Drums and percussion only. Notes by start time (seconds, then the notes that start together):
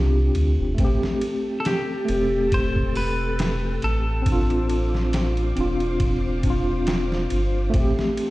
0.35 ride
0.78 kick, ride
1.03 snare
1.21 ride
1.65 snare, ride
2.08 ride
2.52 kick, ride
2.76 kick
2.95 open hi-hat
3.39 snare, ride
3.82 ride
4.26 kick, ride
4.50 ride
4.70 ride
4.95 snare
5.13 snare, ride
5.37 ride
5.57 ride
5.80 ride
6.00 kick, ride
6.43 kick, ride
6.87 snare, ride
7.12 snare
7.30 ride
7.74 kick, ride
7.99 snare
8.17 ride